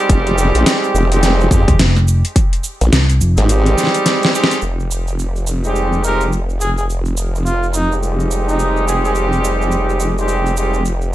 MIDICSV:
0, 0, Header, 1, 6, 480
1, 0, Start_track
1, 0, Key_signature, -4, "minor"
1, 0, Tempo, 566038
1, 81, Time_signature, 4, 2, 24, 8
1, 9454, End_track
2, 0, Start_track
2, 0, Title_t, "Trumpet"
2, 0, Program_c, 0, 56
2, 5124, Note_on_c, 0, 70, 87
2, 5310, Note_off_c, 0, 70, 0
2, 5600, Note_on_c, 0, 68, 89
2, 5694, Note_off_c, 0, 68, 0
2, 5748, Note_on_c, 0, 68, 77
2, 5808, Note_off_c, 0, 68, 0
2, 6320, Note_on_c, 0, 65, 87
2, 6508, Note_off_c, 0, 65, 0
2, 6563, Note_on_c, 0, 63, 88
2, 6749, Note_off_c, 0, 63, 0
2, 7187, Note_on_c, 0, 63, 85
2, 7503, Note_off_c, 0, 63, 0
2, 7524, Note_on_c, 0, 68, 84
2, 7615, Note_off_c, 0, 68, 0
2, 7668, Note_on_c, 0, 68, 76
2, 7728, Note_off_c, 0, 68, 0
2, 9454, End_track
3, 0, Start_track
3, 0, Title_t, "Horn section"
3, 0, Program_c, 1, 61
3, 0, Note_on_c, 1, 55, 105
3, 0, Note_on_c, 1, 56, 102
3, 0, Note_on_c, 1, 60, 90
3, 0, Note_on_c, 1, 63, 93
3, 0, Note_on_c, 1, 67, 114
3, 912, Note_off_c, 1, 55, 0
3, 912, Note_off_c, 1, 56, 0
3, 912, Note_off_c, 1, 60, 0
3, 912, Note_off_c, 1, 63, 0
3, 912, Note_off_c, 1, 67, 0
3, 946, Note_on_c, 1, 63, 83
3, 947, Note_on_c, 1, 55, 95
3, 947, Note_on_c, 1, 56, 94
3, 947, Note_on_c, 1, 60, 87
3, 947, Note_on_c, 1, 67, 104
3, 1259, Note_off_c, 1, 55, 0
3, 1259, Note_off_c, 1, 56, 0
3, 1259, Note_off_c, 1, 60, 0
3, 1259, Note_off_c, 1, 63, 0
3, 1259, Note_off_c, 1, 67, 0
3, 1282, Note_on_c, 1, 55, 93
3, 1282, Note_on_c, 1, 56, 95
3, 1282, Note_on_c, 1, 60, 85
3, 1282, Note_on_c, 1, 67, 101
3, 1283, Note_on_c, 1, 63, 89
3, 1486, Note_off_c, 1, 55, 0
3, 1486, Note_off_c, 1, 56, 0
3, 1486, Note_off_c, 1, 60, 0
3, 1486, Note_off_c, 1, 63, 0
3, 1486, Note_off_c, 1, 67, 0
3, 2865, Note_on_c, 1, 63, 90
3, 2866, Note_on_c, 1, 55, 99
3, 2866, Note_on_c, 1, 60, 89
3, 2866, Note_on_c, 1, 67, 108
3, 2867, Note_on_c, 1, 56, 97
3, 3662, Note_off_c, 1, 55, 0
3, 3662, Note_off_c, 1, 56, 0
3, 3662, Note_off_c, 1, 60, 0
3, 3662, Note_off_c, 1, 63, 0
3, 3662, Note_off_c, 1, 67, 0
3, 3681, Note_on_c, 1, 55, 95
3, 3681, Note_on_c, 1, 56, 93
3, 3681, Note_on_c, 1, 60, 83
3, 3681, Note_on_c, 1, 63, 85
3, 3681, Note_on_c, 1, 67, 104
3, 3885, Note_off_c, 1, 56, 0
3, 3886, Note_off_c, 1, 55, 0
3, 3886, Note_off_c, 1, 60, 0
3, 3886, Note_off_c, 1, 63, 0
3, 3886, Note_off_c, 1, 67, 0
3, 4786, Note_on_c, 1, 55, 90
3, 4786, Note_on_c, 1, 56, 83
3, 4786, Note_on_c, 1, 60, 80
3, 4786, Note_on_c, 1, 67, 98
3, 4787, Note_on_c, 1, 63, 81
3, 5098, Note_off_c, 1, 56, 0
3, 5098, Note_off_c, 1, 60, 0
3, 5099, Note_off_c, 1, 55, 0
3, 5099, Note_off_c, 1, 63, 0
3, 5099, Note_off_c, 1, 67, 0
3, 5121, Note_on_c, 1, 55, 83
3, 5121, Note_on_c, 1, 56, 85
3, 5121, Note_on_c, 1, 60, 78
3, 5121, Note_on_c, 1, 63, 82
3, 5121, Note_on_c, 1, 67, 90
3, 5325, Note_off_c, 1, 56, 0
3, 5325, Note_off_c, 1, 60, 0
3, 5325, Note_off_c, 1, 63, 0
3, 5326, Note_off_c, 1, 55, 0
3, 5326, Note_off_c, 1, 67, 0
3, 6706, Note_on_c, 1, 55, 97
3, 6706, Note_on_c, 1, 56, 93
3, 6706, Note_on_c, 1, 60, 87
3, 6706, Note_on_c, 1, 63, 88
3, 6706, Note_on_c, 1, 67, 105
3, 8591, Note_off_c, 1, 55, 0
3, 8591, Note_off_c, 1, 56, 0
3, 8591, Note_off_c, 1, 60, 0
3, 8591, Note_off_c, 1, 63, 0
3, 8591, Note_off_c, 1, 67, 0
3, 8628, Note_on_c, 1, 55, 86
3, 8628, Note_on_c, 1, 56, 87
3, 8628, Note_on_c, 1, 60, 80
3, 8628, Note_on_c, 1, 63, 81
3, 8628, Note_on_c, 1, 67, 94
3, 8939, Note_off_c, 1, 55, 0
3, 8939, Note_off_c, 1, 63, 0
3, 8939, Note_off_c, 1, 67, 0
3, 8940, Note_off_c, 1, 56, 0
3, 8940, Note_off_c, 1, 60, 0
3, 8963, Note_on_c, 1, 55, 88
3, 8963, Note_on_c, 1, 56, 87
3, 8963, Note_on_c, 1, 60, 77
3, 8963, Note_on_c, 1, 63, 76
3, 8963, Note_on_c, 1, 67, 96
3, 9167, Note_off_c, 1, 55, 0
3, 9167, Note_off_c, 1, 56, 0
3, 9167, Note_off_c, 1, 60, 0
3, 9167, Note_off_c, 1, 63, 0
3, 9167, Note_off_c, 1, 67, 0
3, 9454, End_track
4, 0, Start_track
4, 0, Title_t, "Wobble bass"
4, 0, Program_c, 2, 39
4, 80, Note_on_c, 2, 29, 99
4, 442, Note_off_c, 2, 29, 0
4, 466, Note_on_c, 2, 34, 102
4, 546, Note_off_c, 2, 34, 0
4, 802, Note_on_c, 2, 29, 95
4, 1266, Note_off_c, 2, 29, 0
4, 1279, Note_on_c, 2, 41, 94
4, 1402, Note_off_c, 2, 41, 0
4, 2386, Note_on_c, 2, 34, 103
4, 2466, Note_off_c, 2, 34, 0
4, 2864, Note_on_c, 2, 32, 96
4, 3185, Note_off_c, 2, 32, 0
4, 3922, Note_on_c, 2, 29, 90
4, 9454, Note_off_c, 2, 29, 0
4, 9454, End_track
5, 0, Start_track
5, 0, Title_t, "Fingered electric bass"
5, 0, Program_c, 3, 33
5, 1426, Note_on_c, 3, 29, 100
5, 1506, Note_off_c, 3, 29, 0
5, 1521, Note_on_c, 3, 29, 93
5, 1883, Note_off_c, 3, 29, 0
5, 2480, Note_on_c, 3, 36, 97
5, 2706, Note_off_c, 3, 36, 0
5, 2721, Note_on_c, 3, 29, 102
5, 2843, Note_off_c, 3, 29, 0
5, 9454, End_track
6, 0, Start_track
6, 0, Title_t, "Drums"
6, 80, Note_on_c, 9, 36, 111
6, 81, Note_on_c, 9, 42, 66
6, 85, Note_on_c, 9, 69, 46
6, 165, Note_off_c, 9, 36, 0
6, 166, Note_off_c, 9, 42, 0
6, 170, Note_off_c, 9, 69, 0
6, 227, Note_on_c, 9, 69, 24
6, 228, Note_on_c, 9, 42, 36
6, 312, Note_off_c, 9, 42, 0
6, 312, Note_off_c, 9, 69, 0
6, 322, Note_on_c, 9, 69, 102
6, 407, Note_off_c, 9, 69, 0
6, 465, Note_on_c, 9, 69, 36
6, 467, Note_on_c, 9, 42, 54
6, 550, Note_off_c, 9, 69, 0
6, 552, Note_off_c, 9, 42, 0
6, 562, Note_on_c, 9, 38, 111
6, 562, Note_on_c, 9, 42, 64
6, 568, Note_on_c, 9, 69, 53
6, 647, Note_off_c, 9, 38, 0
6, 647, Note_off_c, 9, 42, 0
6, 653, Note_off_c, 9, 69, 0
6, 710, Note_on_c, 9, 69, 26
6, 795, Note_off_c, 9, 69, 0
6, 807, Note_on_c, 9, 69, 83
6, 892, Note_off_c, 9, 69, 0
6, 947, Note_on_c, 9, 42, 53
6, 950, Note_on_c, 9, 69, 41
6, 1032, Note_off_c, 9, 42, 0
6, 1035, Note_off_c, 9, 69, 0
6, 1042, Note_on_c, 9, 38, 61
6, 1042, Note_on_c, 9, 42, 65
6, 1042, Note_on_c, 9, 69, 52
6, 1127, Note_off_c, 9, 38, 0
6, 1127, Note_off_c, 9, 42, 0
6, 1127, Note_off_c, 9, 69, 0
6, 1193, Note_on_c, 9, 69, 25
6, 1277, Note_off_c, 9, 69, 0
6, 1280, Note_on_c, 9, 36, 103
6, 1287, Note_on_c, 9, 69, 102
6, 1365, Note_off_c, 9, 36, 0
6, 1372, Note_off_c, 9, 69, 0
6, 1425, Note_on_c, 9, 36, 106
6, 1427, Note_on_c, 9, 42, 50
6, 1428, Note_on_c, 9, 69, 40
6, 1510, Note_off_c, 9, 36, 0
6, 1512, Note_off_c, 9, 42, 0
6, 1513, Note_off_c, 9, 69, 0
6, 1522, Note_on_c, 9, 38, 116
6, 1522, Note_on_c, 9, 42, 70
6, 1522, Note_on_c, 9, 69, 49
6, 1607, Note_off_c, 9, 38, 0
6, 1607, Note_off_c, 9, 42, 0
6, 1607, Note_off_c, 9, 69, 0
6, 1666, Note_on_c, 9, 40, 42
6, 1667, Note_on_c, 9, 69, 23
6, 1751, Note_off_c, 9, 40, 0
6, 1752, Note_off_c, 9, 69, 0
6, 1761, Note_on_c, 9, 69, 87
6, 1846, Note_off_c, 9, 69, 0
6, 1906, Note_on_c, 9, 42, 55
6, 1912, Note_on_c, 9, 69, 41
6, 1991, Note_off_c, 9, 42, 0
6, 1997, Note_off_c, 9, 69, 0
6, 2000, Note_on_c, 9, 36, 111
6, 2000, Note_on_c, 9, 42, 71
6, 2005, Note_on_c, 9, 69, 51
6, 2085, Note_off_c, 9, 36, 0
6, 2085, Note_off_c, 9, 42, 0
6, 2089, Note_off_c, 9, 69, 0
6, 2144, Note_on_c, 9, 42, 39
6, 2149, Note_on_c, 9, 69, 27
6, 2229, Note_off_c, 9, 42, 0
6, 2234, Note_off_c, 9, 69, 0
6, 2236, Note_on_c, 9, 69, 88
6, 2321, Note_off_c, 9, 69, 0
6, 2385, Note_on_c, 9, 42, 56
6, 2388, Note_on_c, 9, 69, 38
6, 2470, Note_off_c, 9, 42, 0
6, 2473, Note_off_c, 9, 69, 0
6, 2481, Note_on_c, 9, 38, 115
6, 2481, Note_on_c, 9, 42, 67
6, 2489, Note_on_c, 9, 69, 47
6, 2566, Note_off_c, 9, 38, 0
6, 2566, Note_off_c, 9, 42, 0
6, 2574, Note_off_c, 9, 69, 0
6, 2625, Note_on_c, 9, 42, 37
6, 2634, Note_on_c, 9, 69, 27
6, 2710, Note_off_c, 9, 42, 0
6, 2718, Note_off_c, 9, 69, 0
6, 2721, Note_on_c, 9, 69, 100
6, 2806, Note_off_c, 9, 69, 0
6, 2858, Note_on_c, 9, 69, 35
6, 2865, Note_on_c, 9, 40, 39
6, 2865, Note_on_c, 9, 42, 52
6, 2943, Note_off_c, 9, 69, 0
6, 2950, Note_off_c, 9, 40, 0
6, 2950, Note_off_c, 9, 42, 0
6, 2961, Note_on_c, 9, 42, 66
6, 2961, Note_on_c, 9, 69, 51
6, 3046, Note_off_c, 9, 42, 0
6, 3046, Note_off_c, 9, 69, 0
6, 3105, Note_on_c, 9, 69, 27
6, 3107, Note_on_c, 9, 42, 40
6, 3190, Note_off_c, 9, 69, 0
6, 3192, Note_off_c, 9, 42, 0
6, 3202, Note_on_c, 9, 38, 28
6, 3204, Note_on_c, 9, 69, 98
6, 3251, Note_off_c, 9, 38, 0
6, 3251, Note_on_c, 9, 38, 39
6, 3281, Note_off_c, 9, 38, 0
6, 3281, Note_on_c, 9, 38, 51
6, 3289, Note_off_c, 9, 69, 0
6, 3345, Note_on_c, 9, 42, 54
6, 3352, Note_on_c, 9, 69, 41
6, 3366, Note_off_c, 9, 38, 0
6, 3430, Note_off_c, 9, 42, 0
6, 3437, Note_off_c, 9, 69, 0
6, 3441, Note_on_c, 9, 38, 70
6, 3441, Note_on_c, 9, 42, 70
6, 3441, Note_on_c, 9, 69, 51
6, 3526, Note_off_c, 9, 38, 0
6, 3526, Note_off_c, 9, 42, 0
6, 3526, Note_off_c, 9, 69, 0
6, 3588, Note_on_c, 9, 42, 38
6, 3591, Note_on_c, 9, 69, 28
6, 3601, Note_on_c, 9, 38, 83
6, 3672, Note_off_c, 9, 42, 0
6, 3676, Note_off_c, 9, 69, 0
6, 3686, Note_off_c, 9, 38, 0
6, 3687, Note_on_c, 9, 69, 94
6, 3761, Note_on_c, 9, 38, 101
6, 3772, Note_off_c, 9, 69, 0
6, 3827, Note_on_c, 9, 42, 55
6, 3832, Note_on_c, 9, 69, 43
6, 3846, Note_off_c, 9, 38, 0
6, 3912, Note_off_c, 9, 42, 0
6, 3914, Note_off_c, 9, 69, 0
6, 3914, Note_on_c, 9, 69, 47
6, 3999, Note_off_c, 9, 69, 0
6, 4070, Note_on_c, 9, 69, 24
6, 4155, Note_off_c, 9, 69, 0
6, 4164, Note_on_c, 9, 69, 91
6, 4249, Note_off_c, 9, 69, 0
6, 4303, Note_on_c, 9, 69, 40
6, 4388, Note_off_c, 9, 69, 0
6, 4403, Note_on_c, 9, 69, 47
6, 4488, Note_off_c, 9, 69, 0
6, 4544, Note_on_c, 9, 69, 24
6, 4629, Note_off_c, 9, 69, 0
6, 4637, Note_on_c, 9, 69, 90
6, 4722, Note_off_c, 9, 69, 0
6, 4783, Note_on_c, 9, 69, 38
6, 4868, Note_off_c, 9, 69, 0
6, 4882, Note_on_c, 9, 69, 48
6, 4966, Note_off_c, 9, 69, 0
6, 5027, Note_on_c, 9, 69, 26
6, 5112, Note_off_c, 9, 69, 0
6, 5122, Note_on_c, 9, 69, 83
6, 5206, Note_off_c, 9, 69, 0
6, 5264, Note_on_c, 9, 69, 37
6, 5349, Note_off_c, 9, 69, 0
6, 5364, Note_on_c, 9, 69, 50
6, 5449, Note_off_c, 9, 69, 0
6, 5508, Note_on_c, 9, 69, 23
6, 5593, Note_off_c, 9, 69, 0
6, 5603, Note_on_c, 9, 69, 93
6, 5687, Note_off_c, 9, 69, 0
6, 5747, Note_on_c, 9, 69, 41
6, 5832, Note_off_c, 9, 69, 0
6, 5850, Note_on_c, 9, 69, 48
6, 5935, Note_off_c, 9, 69, 0
6, 5981, Note_on_c, 9, 69, 26
6, 6066, Note_off_c, 9, 69, 0
6, 6081, Note_on_c, 9, 69, 98
6, 6166, Note_off_c, 9, 69, 0
6, 6236, Note_on_c, 9, 69, 35
6, 6320, Note_off_c, 9, 69, 0
6, 6327, Note_on_c, 9, 69, 51
6, 6412, Note_off_c, 9, 69, 0
6, 6471, Note_on_c, 9, 69, 26
6, 6555, Note_off_c, 9, 69, 0
6, 6561, Note_on_c, 9, 69, 91
6, 6646, Note_off_c, 9, 69, 0
6, 6715, Note_on_c, 9, 69, 36
6, 6800, Note_off_c, 9, 69, 0
6, 6808, Note_on_c, 9, 69, 49
6, 6893, Note_off_c, 9, 69, 0
6, 6953, Note_on_c, 9, 69, 27
6, 7038, Note_off_c, 9, 69, 0
6, 7047, Note_on_c, 9, 69, 91
6, 7132, Note_off_c, 9, 69, 0
6, 7197, Note_on_c, 9, 69, 39
6, 7281, Note_off_c, 9, 69, 0
6, 7287, Note_on_c, 9, 69, 53
6, 7372, Note_off_c, 9, 69, 0
6, 7434, Note_on_c, 9, 69, 23
6, 7519, Note_off_c, 9, 69, 0
6, 7530, Note_on_c, 9, 69, 93
6, 7615, Note_off_c, 9, 69, 0
6, 7673, Note_on_c, 9, 69, 39
6, 7758, Note_off_c, 9, 69, 0
6, 7760, Note_on_c, 9, 69, 46
6, 7845, Note_off_c, 9, 69, 0
6, 7908, Note_on_c, 9, 69, 27
6, 7993, Note_off_c, 9, 69, 0
6, 8008, Note_on_c, 9, 69, 101
6, 8093, Note_off_c, 9, 69, 0
6, 8156, Note_on_c, 9, 69, 37
6, 8238, Note_off_c, 9, 69, 0
6, 8238, Note_on_c, 9, 69, 56
6, 8323, Note_off_c, 9, 69, 0
6, 8391, Note_on_c, 9, 69, 27
6, 8476, Note_off_c, 9, 69, 0
6, 8479, Note_on_c, 9, 69, 92
6, 8563, Note_off_c, 9, 69, 0
6, 8633, Note_on_c, 9, 69, 37
6, 8718, Note_off_c, 9, 69, 0
6, 8719, Note_on_c, 9, 69, 49
6, 8804, Note_off_c, 9, 69, 0
6, 8872, Note_on_c, 9, 69, 29
6, 8956, Note_off_c, 9, 69, 0
6, 8961, Note_on_c, 9, 69, 86
6, 9045, Note_off_c, 9, 69, 0
6, 9106, Note_on_c, 9, 69, 40
6, 9190, Note_off_c, 9, 69, 0
6, 9203, Note_on_c, 9, 69, 52
6, 9288, Note_off_c, 9, 69, 0
6, 9341, Note_on_c, 9, 69, 26
6, 9426, Note_off_c, 9, 69, 0
6, 9454, End_track
0, 0, End_of_file